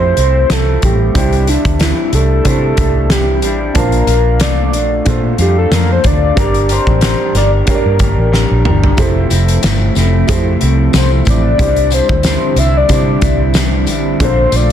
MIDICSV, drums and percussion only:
0, 0, Header, 1, 2, 480
1, 0, Start_track
1, 0, Key_signature, -1, "major"
1, 0, Tempo, 652032
1, 851, Time_signature, 4, 2, 24, 8
1, 10836, End_track
2, 0, Start_track
2, 0, Title_t, "Drums"
2, 124, Note_on_c, 9, 42, 67
2, 198, Note_off_c, 9, 42, 0
2, 367, Note_on_c, 9, 38, 112
2, 368, Note_on_c, 9, 42, 82
2, 441, Note_off_c, 9, 38, 0
2, 442, Note_off_c, 9, 42, 0
2, 605, Note_on_c, 9, 42, 66
2, 611, Note_on_c, 9, 36, 85
2, 679, Note_off_c, 9, 42, 0
2, 684, Note_off_c, 9, 36, 0
2, 847, Note_on_c, 9, 42, 83
2, 848, Note_on_c, 9, 36, 113
2, 921, Note_off_c, 9, 36, 0
2, 921, Note_off_c, 9, 42, 0
2, 975, Note_on_c, 9, 42, 42
2, 1049, Note_off_c, 9, 42, 0
2, 1086, Note_on_c, 9, 42, 73
2, 1159, Note_off_c, 9, 42, 0
2, 1214, Note_on_c, 9, 42, 53
2, 1215, Note_on_c, 9, 36, 95
2, 1288, Note_off_c, 9, 42, 0
2, 1289, Note_off_c, 9, 36, 0
2, 1321, Note_on_c, 9, 42, 82
2, 1330, Note_on_c, 9, 38, 110
2, 1395, Note_off_c, 9, 42, 0
2, 1404, Note_off_c, 9, 38, 0
2, 1566, Note_on_c, 9, 42, 70
2, 1640, Note_off_c, 9, 42, 0
2, 1803, Note_on_c, 9, 42, 91
2, 1806, Note_on_c, 9, 36, 76
2, 1876, Note_off_c, 9, 42, 0
2, 1879, Note_off_c, 9, 36, 0
2, 2040, Note_on_c, 9, 42, 65
2, 2045, Note_on_c, 9, 36, 84
2, 2114, Note_off_c, 9, 42, 0
2, 2118, Note_off_c, 9, 36, 0
2, 2282, Note_on_c, 9, 38, 108
2, 2283, Note_on_c, 9, 42, 78
2, 2355, Note_off_c, 9, 38, 0
2, 2357, Note_off_c, 9, 42, 0
2, 2520, Note_on_c, 9, 42, 72
2, 2594, Note_off_c, 9, 42, 0
2, 2760, Note_on_c, 9, 42, 84
2, 2764, Note_on_c, 9, 36, 115
2, 2834, Note_off_c, 9, 42, 0
2, 2838, Note_off_c, 9, 36, 0
2, 2887, Note_on_c, 9, 42, 41
2, 2960, Note_off_c, 9, 42, 0
2, 2999, Note_on_c, 9, 42, 75
2, 3072, Note_off_c, 9, 42, 0
2, 3237, Note_on_c, 9, 42, 96
2, 3246, Note_on_c, 9, 38, 104
2, 3310, Note_off_c, 9, 42, 0
2, 3319, Note_off_c, 9, 38, 0
2, 3485, Note_on_c, 9, 42, 63
2, 3559, Note_off_c, 9, 42, 0
2, 3722, Note_on_c, 9, 42, 81
2, 3727, Note_on_c, 9, 36, 93
2, 3796, Note_off_c, 9, 42, 0
2, 3801, Note_off_c, 9, 36, 0
2, 3963, Note_on_c, 9, 42, 62
2, 4037, Note_off_c, 9, 42, 0
2, 4208, Note_on_c, 9, 38, 120
2, 4210, Note_on_c, 9, 42, 79
2, 4282, Note_off_c, 9, 38, 0
2, 4283, Note_off_c, 9, 42, 0
2, 4445, Note_on_c, 9, 42, 77
2, 4450, Note_on_c, 9, 36, 97
2, 4519, Note_off_c, 9, 42, 0
2, 4523, Note_off_c, 9, 36, 0
2, 4689, Note_on_c, 9, 36, 105
2, 4689, Note_on_c, 9, 42, 80
2, 4763, Note_off_c, 9, 36, 0
2, 4763, Note_off_c, 9, 42, 0
2, 4817, Note_on_c, 9, 42, 42
2, 4891, Note_off_c, 9, 42, 0
2, 4925, Note_on_c, 9, 42, 73
2, 4999, Note_off_c, 9, 42, 0
2, 5057, Note_on_c, 9, 36, 83
2, 5130, Note_off_c, 9, 36, 0
2, 5162, Note_on_c, 9, 42, 85
2, 5171, Note_on_c, 9, 38, 104
2, 5236, Note_off_c, 9, 42, 0
2, 5245, Note_off_c, 9, 38, 0
2, 5410, Note_on_c, 9, 42, 60
2, 5414, Note_on_c, 9, 38, 33
2, 5483, Note_off_c, 9, 42, 0
2, 5488, Note_off_c, 9, 38, 0
2, 5645, Note_on_c, 9, 42, 80
2, 5650, Note_on_c, 9, 36, 79
2, 5719, Note_off_c, 9, 42, 0
2, 5724, Note_off_c, 9, 36, 0
2, 5884, Note_on_c, 9, 42, 67
2, 5889, Note_on_c, 9, 36, 91
2, 5957, Note_off_c, 9, 42, 0
2, 5962, Note_off_c, 9, 36, 0
2, 6135, Note_on_c, 9, 38, 54
2, 6209, Note_off_c, 9, 38, 0
2, 6370, Note_on_c, 9, 45, 85
2, 6444, Note_off_c, 9, 45, 0
2, 6504, Note_on_c, 9, 43, 85
2, 6578, Note_off_c, 9, 43, 0
2, 6604, Note_on_c, 9, 54, 30
2, 6609, Note_on_c, 9, 42, 79
2, 6611, Note_on_c, 9, 36, 114
2, 6677, Note_off_c, 9, 54, 0
2, 6683, Note_off_c, 9, 42, 0
2, 6684, Note_off_c, 9, 36, 0
2, 6848, Note_on_c, 9, 54, 45
2, 6852, Note_on_c, 9, 42, 78
2, 6921, Note_off_c, 9, 54, 0
2, 6925, Note_off_c, 9, 42, 0
2, 6982, Note_on_c, 9, 42, 60
2, 7055, Note_off_c, 9, 42, 0
2, 7087, Note_on_c, 9, 54, 83
2, 7088, Note_on_c, 9, 42, 93
2, 7097, Note_on_c, 9, 38, 99
2, 7160, Note_off_c, 9, 54, 0
2, 7162, Note_off_c, 9, 42, 0
2, 7170, Note_off_c, 9, 38, 0
2, 7326, Note_on_c, 9, 54, 45
2, 7334, Note_on_c, 9, 42, 70
2, 7338, Note_on_c, 9, 38, 35
2, 7400, Note_off_c, 9, 54, 0
2, 7408, Note_off_c, 9, 42, 0
2, 7412, Note_off_c, 9, 38, 0
2, 7565, Note_on_c, 9, 54, 45
2, 7572, Note_on_c, 9, 42, 80
2, 7573, Note_on_c, 9, 36, 91
2, 7638, Note_off_c, 9, 54, 0
2, 7646, Note_off_c, 9, 42, 0
2, 7647, Note_off_c, 9, 36, 0
2, 7809, Note_on_c, 9, 42, 68
2, 7883, Note_off_c, 9, 42, 0
2, 8048, Note_on_c, 9, 54, 69
2, 8052, Note_on_c, 9, 38, 112
2, 8054, Note_on_c, 9, 42, 88
2, 8122, Note_off_c, 9, 54, 0
2, 8126, Note_off_c, 9, 38, 0
2, 8127, Note_off_c, 9, 42, 0
2, 8283, Note_on_c, 9, 54, 44
2, 8295, Note_on_c, 9, 42, 75
2, 8296, Note_on_c, 9, 36, 88
2, 8357, Note_off_c, 9, 54, 0
2, 8369, Note_off_c, 9, 36, 0
2, 8369, Note_off_c, 9, 42, 0
2, 8533, Note_on_c, 9, 36, 116
2, 8536, Note_on_c, 9, 42, 85
2, 8607, Note_off_c, 9, 36, 0
2, 8610, Note_off_c, 9, 42, 0
2, 8660, Note_on_c, 9, 42, 47
2, 8733, Note_off_c, 9, 42, 0
2, 8763, Note_on_c, 9, 54, 49
2, 8773, Note_on_c, 9, 42, 74
2, 8837, Note_off_c, 9, 54, 0
2, 8846, Note_off_c, 9, 42, 0
2, 8902, Note_on_c, 9, 36, 98
2, 8976, Note_off_c, 9, 36, 0
2, 9004, Note_on_c, 9, 54, 81
2, 9006, Note_on_c, 9, 42, 97
2, 9015, Note_on_c, 9, 38, 105
2, 9078, Note_off_c, 9, 54, 0
2, 9080, Note_off_c, 9, 42, 0
2, 9089, Note_off_c, 9, 38, 0
2, 9250, Note_on_c, 9, 42, 75
2, 9251, Note_on_c, 9, 54, 46
2, 9323, Note_off_c, 9, 42, 0
2, 9325, Note_off_c, 9, 54, 0
2, 9489, Note_on_c, 9, 42, 84
2, 9492, Note_on_c, 9, 54, 43
2, 9493, Note_on_c, 9, 36, 91
2, 9562, Note_off_c, 9, 42, 0
2, 9565, Note_off_c, 9, 54, 0
2, 9567, Note_off_c, 9, 36, 0
2, 9728, Note_on_c, 9, 42, 62
2, 9730, Note_on_c, 9, 54, 30
2, 9733, Note_on_c, 9, 36, 100
2, 9802, Note_off_c, 9, 42, 0
2, 9803, Note_off_c, 9, 54, 0
2, 9807, Note_off_c, 9, 36, 0
2, 9966, Note_on_c, 9, 54, 70
2, 9974, Note_on_c, 9, 38, 120
2, 9976, Note_on_c, 9, 42, 88
2, 10039, Note_off_c, 9, 54, 0
2, 10048, Note_off_c, 9, 38, 0
2, 10049, Note_off_c, 9, 42, 0
2, 10207, Note_on_c, 9, 54, 43
2, 10212, Note_on_c, 9, 42, 73
2, 10281, Note_off_c, 9, 54, 0
2, 10286, Note_off_c, 9, 42, 0
2, 10455, Note_on_c, 9, 36, 106
2, 10455, Note_on_c, 9, 42, 81
2, 10528, Note_off_c, 9, 36, 0
2, 10528, Note_off_c, 9, 42, 0
2, 10689, Note_on_c, 9, 54, 49
2, 10690, Note_on_c, 9, 42, 82
2, 10763, Note_off_c, 9, 54, 0
2, 10764, Note_off_c, 9, 42, 0
2, 10836, End_track
0, 0, End_of_file